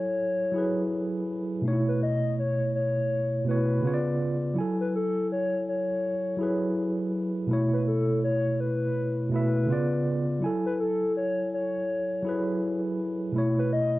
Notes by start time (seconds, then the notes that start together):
Already playing: F#3 E4 A4 C#5 G#5
0.52 F#3 E4
0.56 G#4 B4
1.62 B2 A3
1.66 D#4 C#5
1.72 E4
1.88 B4
2.03 D#5
2.39 C#5
2.75 C#5
3.44 B2 A3 B4
3.49 E4 C#5
3.81 C#3 B3
3.85 F4 C#5
3.94 D5
4.54 F#3 E4
4.58 A4 G#5
4.81 B4
4.96 A4
5.32 C#5
5.69 C#5
6.37 F#3 E4
6.41 G#4 B4
7.47 B2 A3
7.51 E4 C#5
7.73 B4
7.88 A4
8.24 C#5
8.60 B4
9.30 B2 A3
9.34 E4 B4 E5
9.66 C#3 B3
9.70 F4 D5
10.40 F#3 E4
10.44 A4 G#5
10.66 B4
10.80 A4
11.17 C#5
11.54 C#5
12.22 F#3 E4
12.27 G#4 B4
13.32 B2 A3
13.36 E4 C#5
13.59 B4
13.73 D#5